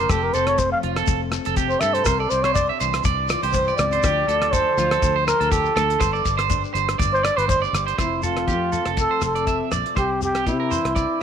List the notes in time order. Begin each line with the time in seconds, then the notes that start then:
0.00 A#4
0.09 F1 F2 F3 A3 C4 G4 A4, kick, cross-stick, closed hi-hat, shekere
0.23 A#4
0.34 F1 A4 C5, closed hi-hat, shekere
0.47 C#5, cross-stick, closed hi-hat
0.58 C4 C5, kick, closed hi-hat, shekere
0.72 F5
0.83 F1 F3 F4, closed hi-hat
0.96 A4, cross-stick, closed hi-hat, shekere
1.07 F1, kick, closed hi-hat, shekere
1.32 A4, cross-stick, closed hi-hat, shekere
1.45 F1 A4, closed hi-hat, shekere
1.56 C3 G4, kick, closed hi-hat, shekere
1.69 C5, shekere
1.80 G2 A3 A4 E5, cross-stick, closed hi-hat, shekere
1.94 C5, closed hi-hat, shekere
2.05 C2 C3 G4 A#4 C5, kick, cross-stick, closed hi-hat, shekere
2.18 A4 D5
2.30 C2 C5, closed hi-hat, shekere
2.42 C5 C#5, cross-stick, closed hi-hat
2.54 D4 D5, kick, closed hi-hat, shekere
2.69 E5
2.80 C2 E3 C5, closed hi-hat, shekere
2.93 cross-stick, closed hi-hat, shekere
3.04 C2 D5, kick, closed hi-hat, shekere
3.29 F4 D5, cross-stick, closed hi-hat, shekere
3.43 C2 G4 C5, closed hi-hat, shekere
3.53 G2 C5, kick, closed hi-hat, shekere
3.68 D5, shekere
3.77 C#2 C4 D5, cross-stick, closed hi-hat, shekere
3.92 C5, closed hi-hat, shekere
4.03 D2 D3 F3 D4 F4 G4, muted steel-string acoustic guitar stroke, kick, cross-stick, closed hi-hat, shekere
4.28 D2 A4, closed hi-hat, shekere
4.42 cross-stick, closed hi-hat
4.53 A4 C5, kick, closed hi-hat, shekere
4.77 D2 F3 F4, closed hi-hat, shekere
4.91 A4, cross-stick, closed hi-hat, shekere
5.02 D2, kick, closed hi-hat, shekere
5.16 C5
5.27 F4 A#4, cross-stick, closed hi-hat, shekere
5.40 D2 A4, closed hi-hat, shekere
5.51 A2 G4 A4, kick, closed hi-hat, shekere
5.65 shekere
5.76 D2 A3 A4, cross-stick, closed hi-hat, shekere
5.90 closed hi-hat, shekere
6.00 G1 G2 G4 C5, kick, cross-stick, closed hi-hat, shekere
6.13 D5, shekere
6.25 G1, kick, closed hi-hat, shekere
6.38 C5, cross-stick, closed hi-hat, shekere
6.50 D4, kick, closed hi-hat, shekere
6.64 shekere
6.74 G1 G3 C5, closed hi-hat, shekere
6.89 cross-stick, closed hi-hat, shekere
6.99 G1 D5, kick, closed hi-hat, shekere
7.13 C5, shekere
7.23 G4 D5, cross-stick, closed hi-hat, shekere
7.37 G1 B4 C5, closed hi-hat, shekere
7.48 A2 C5, kick, closed hi-hat, shekere
7.62 D5, shekere
7.73 G1 G2, cross-stick, closed hi-hat, shekere
7.87 C5, closed hi-hat, shekere
7.98 F1 F2 F3 A3 C4 E4 C5, kick, cross-stick, closed hi-hat, shekere
8.23 F4 A4, closed hi-hat, shekere
8.37 cross-stick, closed hi-hat
8.47 F2 G4, kick, closed hi-hat, shekere
8.72 F3 C4 A4, closed hi-hat, shekere
8.86 F1 A4, cross-stick, closed hi-hat
8.97 A4, kick, closed hi-hat, shekere
9.11 C5
9.21 F1 C3 A4, cross-stick, closed hi-hat, shekere
9.35 D5, closed hi-hat, shekere
9.47 E5, kick, closed hi-hat, shekere
9.72 A#1 C4 D5, cross-stick, closed hi-hat, shekere
9.86 closed hi-hat
9.95 C2 C3 C4 G4 C5, kick, cross-stick, closed hi-hat, shekere
10.22 G4, closed hi-hat, shekere
10.35 G4, cross-stick, closed hi-hat, shekere
10.47 C3 E4, kick, closed hi-hat, shekere
10.60 A#4
10.71 E3 D4 C5, closed hi-hat, shekere
10.85 C2, cross-stick, closed hi-hat
10.95 D5, kick, closed hi-hat, shekere